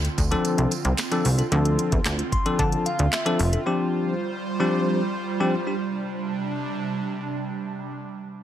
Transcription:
Already playing: D3 C4 F4
0.05 closed hi-hat
0.18 D2, kick, closed hi-hat, tambourine
0.31 F3 C4 D4 A4, closed hi-hat
0.45 closed hi-hat, tambourine
0.58 C2, closed hi-hat
0.71 closed hi-hat, tambourine
0.85 C2, closed hi-hat
0.98 snare, clap, closed hi-hat, tambourine
1.11 F3 C4 D4 A4, closed hi-hat, tambourine
1.25 C2, open hi-hat, tambourine
1.38 D4 A4, closed hi-hat, tambourine
1.52 D2 F3 C4 D4 A4, closed hi-hat
1.65 closed hi-hat
1.79 closed hi-hat
1.92 E2, kick, closed hi-hat
2.05 D2, snare, clap, closed hi-hat
2.19 closed hi-hat
2.32 C6, kick, closed hi-hat
2.46 F3 C4 D4 A4, closed hi-hat
2.59 D3 A5, kick, closed hi-hat
2.72 closed hi-hat
2.86 F5, closed hi-hat
2.99 D2, closed hi-hat
3.13 E5, snare, clap, closed hi-hat
3.26 F3 C4 D4 A4, closed hi-hat
3.39 F1, open hi-hat
3.53 D4 A4, closed hi-hat
3.66 F3 G3 C4 D4 G4 C5
4.60 F3 C4 D4 G4
5.40 F3 C4 D4 G4
5.67 D4 G4
5.81 C3 D4

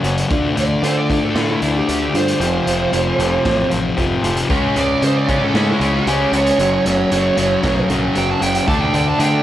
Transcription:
0.03 F#1 F#2 C#3 F#3 A#3 C#4 F#4, closed hi-hat
0.18 closed hi-hat
0.29 D2 D3 A3 D4 F4, kick, closed hi-hat
0.56 D2 D3 A3 D4, closed hi-hat
0.60 D5
0.82 D3 A3 D4 F4 C5, closed hi-hat
0.98 D5
1.09 D3 A3 D4 F4, kick, closed hi-hat
1.25 A4
1.35 A2 D3 A3 D4 F4, snare, closed hi-hat
1.51 E4
1.62 D2 D3 A3 D4, closed hi-hat
1.77 G4
1.88 D2 D3 A3 D4 F4, closed hi-hat
2.14 G2 D3 A3 D4 F4 C5, closed hi-hat
2.28 closed hi-hat
2.40 F1 F2 C3 F3 A3 C4 F4, closed hi-hat
2.66 F1 F2 C3 F3, closed hi-hat
2.92 F1 F2 C3 F3 A3 C4 F4, closed hi-hat
3.18 F1 F2 C3 F3 A3 C4 F4, closed hi-hat
3.44 A1 F2 C3 F3 A3 C4 F4, kick, snare, closed hi-hat
3.70 A1 F2 C3 F3, closed hi-hat
3.97 F1 F2 C3 F3 A3 C4 F4, kick, closed hi-hat
4.23 F1 F2 C3 F3 A3 C4 F4, closed hi-hat
4.37 closed hi-hat
4.49 C#2 C#3 G#3 C#4, kick, closed hi-hat
4.75 C#2 C#3 G#3 C#4 D5, closed hi-hat
5.02 C#3 G#3 C#4 C5, closed hi-hat
5.18 D5
5.27 C#3 G#3 C#4, kick, closed hi-hat
5.44 A4
5.53 G#2 C#3 G#3 C#4, snare, closed hi-hat
5.71 E4
5.80 C#2 C#3 G#3 C#4, closed hi-hat
5.98 G4
6.06 C#2 C#3 G#3 C#4, closed hi-hat
6.32 C#2 C#3 G#3 C#4, closed hi-hat
6.37 C#5
6.47 closed hi-hat
6.58 F#1 F#2 C#3 F#3, closed hi-hat
6.85 F#1 F#2 C#3 F#3, snare, closed hi-hat
7.11 F#1 F#2 C#3 F#3, closed hi-hat
7.37 F#1 F#2 C#3 F#3, closed hi-hat
7.63 B1 F#2 C#3 F#3, kick, snare, closed hi-hat
7.89 A#1 F#2 C#3 F#3, closed hi-hat
8.15 F#1 F#2 C#3 F#3 G5, closed hi-hat
8.31 A5
8.41 F#1 F#2 C#3 F#3 G5, closed hi-hat
8.55 G5, closed hi-hat
8.67 D2 D3 A3 D4 A5, kick, closed hi-hat
8.81 G5
8.93 D2 D3 A3 D4 G5, closed hi-hat
9.09 A5
9.19 D3 A3 D4 G5, closed hi-hat

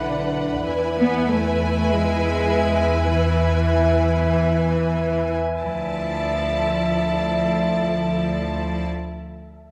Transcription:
Already playing: B1 D3 D4 E4 B4 D5 E5 F#5 B5
0.67 E2 E4 B4 E5 G#5
0.99 B3
1.30 A3
1.92 G#3
3.15 E3
3.47 E5
5.62 D2 F3 E4 A4 D5 E5 A5

